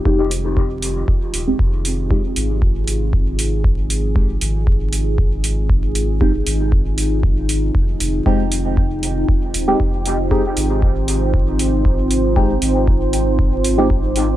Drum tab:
HH |-o-o-o-o|-o-o-o-o|-o-o-o-o|-o-o-o-o|
BD |o-o-o-o-|o-o-o-o-|o-o-o-o-|o-o-o-o-|

HH |-o-o-o-o|-o-o-o-o|-o-o-o-o|
BD |o-o-o-o-|o-o-o-o-|o-o-o-o-|